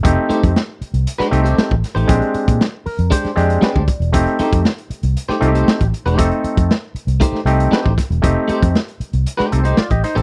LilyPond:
<<
  \new Staff \with { instrumentName = "Clean electric guitar" } { \time 4/4 \key f \mixolydian \tempo 4 = 117 r8 <a ees' g' c''>16 r4. <a ees' g' c''>8 <a ees' g' c''>16 r8. <a ees' g' c''>16 | r2 <aes d' g' c''>16 r8. <aes d' g' c''>8 r8 | r8 <a ees' g' c''>16 r4. <a ees' g' c''>16 r16 <a ees' g' c''>16 r8. <a ees' g' c''>16~ | <a ees' g' c''>16 r4. r16 <a ees' g' c''>16 r8. <a ees' g' c''>8 r8 |
r8 <a ees' g' c''>16 r4. <a ees' g' c''>8 <a ees' g' c''>16 r8. <a ees' g' c''>16 | }
  \new Staff \with { instrumentName = "Clav" } { \time 4/4 \key f \mixolydian << { r1 | r4. bes'8 c''8 d''8 d''4 | r1 | r1 |
r2 r8 <c' a'>16 <ees' c''>16 <f' d''>16 <g' ees''>16 <ees' c''>16 <c' a'>16 | } \\ { <a c' ees' g'>4 r4. <a c' ees' g'>4 r8 | <aes c' des' d' g'>4 r4. <aes c' d' g'>4 r8 | <a c' ees' g'>4 r4. <a c' ees' f' g'>4 r8 | <a c' ees' a'>4 r4. <a c' ees' g'>4 r8 |
<a c' ees' g'>4 r2. | } >> }
  \new Staff \with { instrumentName = "Fingered electric bass" } { \clef bass \time 4/4 \key f \mixolydian f,,16 r8 f,16 r8. c,16 r8 c,8 r16 a,,16 r16 a,,16 | bes,,16 r8 bes,16 r8. f,16 r8 f,8 r16 d,16 r16 e,,16 | f,,16 r8 f,16 r8. c,16 r8 c,8 r16 a,,16 r16 e,,16 | f,,16 r8 f,16 r8. c,16 r8 c,8 r16 a,,16 r16 e,,16 |
f,,16 r8 f,16 r8. c,16 r8 c,8 r16 a,,16 r16 a,,16 | }
  \new DrumStaff \with { instrumentName = "Drums" } \drummode { \time 4/4 <hh bd>8 hh16 <hh bd>16 sn8 hh16 hh16 hh16 <hh sn>16 hh16 hh16 sn16 bd16 <hh sn>16 hh16 | <hh bd>16 hh16 hh16 <hh bd>16 sn8 hho16 hh16 <hh bd>16 sn16 hh16 hh16 sn16 bd16 <hh bd>16 hh16 | <hh bd>16 hh16 hh16 <hh bd>16 sn16 hh16 hh16 hh16 hh16 sn16 hh16 hh16 sn16 <hh bd>16 hh16 hh16 | <hh bd>8 hh16 <hh bd>16 sn8 hh16 hh16 <hh bd>16 sn16 hh16 hh16 sn16 bd16 <hh bd sn>16 hh16 |
<hh bd>8 hh16 <hh bd>16 sn16 hh16 hh16 hh16 hh16 <hh sn>16 hh16 hh16 sn16 <hh bd>16 <hh sn>16 hh16 | }
>>